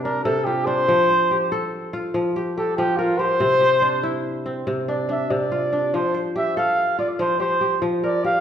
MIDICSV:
0, 0, Header, 1, 3, 480
1, 0, Start_track
1, 0, Key_signature, -1, "major"
1, 0, Tempo, 420463
1, 1010, Time_signature, 12, 3, 24, 8
1, 9595, End_track
2, 0, Start_track
2, 0, Title_t, "Flugelhorn"
2, 0, Program_c, 0, 56
2, 44, Note_on_c, 0, 70, 81
2, 266, Note_off_c, 0, 70, 0
2, 273, Note_on_c, 0, 69, 88
2, 507, Note_on_c, 0, 67, 83
2, 524, Note_off_c, 0, 69, 0
2, 750, Note_on_c, 0, 72, 104
2, 767, Note_off_c, 0, 67, 0
2, 1960, Note_off_c, 0, 72, 0
2, 2935, Note_on_c, 0, 69, 83
2, 3156, Note_off_c, 0, 69, 0
2, 3165, Note_on_c, 0, 67, 93
2, 3388, Note_on_c, 0, 65, 90
2, 3405, Note_off_c, 0, 67, 0
2, 3640, Note_on_c, 0, 72, 113
2, 3657, Note_off_c, 0, 65, 0
2, 4845, Note_off_c, 0, 72, 0
2, 5589, Note_on_c, 0, 74, 77
2, 5803, Note_off_c, 0, 74, 0
2, 5837, Note_on_c, 0, 76, 75
2, 6055, Note_on_c, 0, 74, 80
2, 6072, Note_off_c, 0, 76, 0
2, 6787, Note_on_c, 0, 72, 84
2, 6804, Note_off_c, 0, 74, 0
2, 7018, Note_off_c, 0, 72, 0
2, 7276, Note_on_c, 0, 76, 90
2, 7487, Note_off_c, 0, 76, 0
2, 7507, Note_on_c, 0, 77, 94
2, 7946, Note_off_c, 0, 77, 0
2, 7983, Note_on_c, 0, 74, 82
2, 8088, Note_off_c, 0, 74, 0
2, 8230, Note_on_c, 0, 72, 84
2, 8444, Note_off_c, 0, 72, 0
2, 8454, Note_on_c, 0, 72, 93
2, 8898, Note_off_c, 0, 72, 0
2, 9186, Note_on_c, 0, 74, 88
2, 9402, Note_off_c, 0, 74, 0
2, 9425, Note_on_c, 0, 77, 100
2, 9595, Note_off_c, 0, 77, 0
2, 9595, End_track
3, 0, Start_track
3, 0, Title_t, "Kora"
3, 0, Program_c, 1, 46
3, 0, Note_on_c, 1, 48, 79
3, 0, Note_on_c, 1, 60, 67
3, 0, Note_on_c, 1, 64, 80
3, 58, Note_on_c, 1, 62, 66
3, 274, Note_off_c, 1, 48, 0
3, 288, Note_on_c, 1, 48, 84
3, 531, Note_on_c, 1, 65, 65
3, 599, Note_off_c, 1, 64, 0
3, 759, Note_off_c, 1, 62, 0
3, 764, Note_on_c, 1, 62, 67
3, 1009, Note_on_c, 1, 53, 88
3, 1067, Note_off_c, 1, 48, 0
3, 1250, Note_on_c, 1, 72, 67
3, 1393, Note_off_c, 1, 60, 0
3, 1495, Note_on_c, 1, 67, 63
3, 1732, Note_on_c, 1, 69, 79
3, 2202, Note_off_c, 1, 65, 0
3, 2206, Note_on_c, 1, 65, 67
3, 2432, Note_off_c, 1, 53, 0
3, 2446, Note_on_c, 1, 53, 79
3, 2606, Note_off_c, 1, 72, 0
3, 2681, Note_off_c, 1, 62, 0
3, 2690, Note_off_c, 1, 67, 0
3, 2695, Note_on_c, 1, 67, 65
3, 2935, Note_off_c, 1, 67, 0
3, 2940, Note_on_c, 1, 67, 63
3, 3162, Note_off_c, 1, 53, 0
3, 3176, Note_on_c, 1, 53, 83
3, 3237, Note_off_c, 1, 69, 0
3, 3409, Note_on_c, 1, 70, 66
3, 3638, Note_off_c, 1, 67, 0
3, 3643, Note_on_c, 1, 67, 64
3, 3884, Note_on_c, 1, 48, 87
3, 3934, Note_off_c, 1, 65, 0
3, 3947, Note_off_c, 1, 53, 0
3, 4109, Note_off_c, 1, 67, 0
3, 4114, Note_on_c, 1, 67, 64
3, 4358, Note_on_c, 1, 62, 64
3, 4604, Note_on_c, 1, 64, 82
3, 4862, Note_off_c, 1, 70, 0
3, 5088, Note_on_c, 1, 60, 67
3, 5316, Note_off_c, 1, 48, 0
3, 5330, Note_on_c, 1, 48, 78
3, 5570, Note_off_c, 1, 62, 0
3, 5575, Note_on_c, 1, 62, 65
3, 5726, Note_off_c, 1, 67, 0
3, 5805, Note_off_c, 1, 62, 0
3, 5809, Note_on_c, 1, 62, 68
3, 6041, Note_off_c, 1, 48, 0
3, 6054, Note_on_c, 1, 48, 78
3, 6297, Note_on_c, 1, 65, 64
3, 6365, Note_off_c, 1, 64, 0
3, 6531, Note_off_c, 1, 62, 0
3, 6535, Note_on_c, 1, 62, 65
3, 6780, Note_on_c, 1, 53, 85
3, 6827, Note_off_c, 1, 48, 0
3, 7013, Note_on_c, 1, 72, 64
3, 7143, Note_off_c, 1, 60, 0
3, 7256, Note_on_c, 1, 67, 66
3, 7500, Note_on_c, 1, 69, 80
3, 7970, Note_off_c, 1, 65, 0
3, 7975, Note_on_c, 1, 65, 66
3, 8197, Note_off_c, 1, 53, 0
3, 8210, Note_on_c, 1, 53, 82
3, 8369, Note_off_c, 1, 72, 0
3, 8441, Note_off_c, 1, 67, 0
3, 8446, Note_on_c, 1, 67, 64
3, 8453, Note_off_c, 1, 62, 0
3, 8682, Note_off_c, 1, 67, 0
3, 8686, Note_on_c, 1, 67, 62
3, 8910, Note_off_c, 1, 53, 0
3, 8924, Note_on_c, 1, 53, 80
3, 9004, Note_off_c, 1, 69, 0
3, 9173, Note_on_c, 1, 70, 62
3, 9407, Note_off_c, 1, 67, 0
3, 9411, Note_on_c, 1, 67, 65
3, 9595, Note_off_c, 1, 53, 0
3, 9595, Note_off_c, 1, 65, 0
3, 9595, Note_off_c, 1, 67, 0
3, 9595, Note_off_c, 1, 70, 0
3, 9595, End_track
0, 0, End_of_file